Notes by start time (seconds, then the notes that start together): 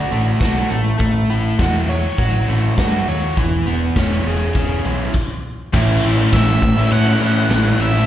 Already playing: D3 A3 D4 F#4 D5
0.11 A1 A3, closed hi-hat
0.39 B1 F#4, kick, snare, closed hi-hat
0.70 A1 A3, closed hi-hat
0.99 A1 A3, kick, closed hi-hat
1.29 A1 E4, closed hi-hat
1.59 E2 F#4, kick, snare, closed hi-hat
1.89 C#5, closed hi-hat
2.18 A1 F#4, kick, closed hi-hat
2.48 A1 A3, closed hi-hat
2.78 G2 F#4, kick, snare, closed hi-hat
3.08 D#2 C#5, closed hi-hat
3.37 E1 E3, kick, closed hi-hat
3.66 E1 B3, closed hi-hat
3.96 E1 C#4, kick, snare, closed hi-hat
4.24 E1 G#4, closed hi-hat
4.54 E1 C#4, kick, closed hi-hat
4.84 B1 E3, closed hi-hat
5.14 kick, crash
5.73 A1 A2 E3 A3 C#4 E4, kick, crash
6.03 A1 E3 A3 C#4 E4, ride
6.18 A3 C#4 E4
6.33 A1 A2 E3 A3 C#4 E4 E5, kick, snare, ride
6.48 A3 C#4 E4
6.62 A1, muted overdriven electric guitar stroke, kick, ride
6.77 A3 C#4 E4
6.92 A2 F#5, ride
7.05 A3 C#4 E4
7.20 A2 E3 A3 C#4 E4, ride
7.49 A1 A2 E3 A3 C#4 E4, snare, ride
7.78 A1 E3 A3 C#4 E4 E5, ride
7.93 A3 C#4 E4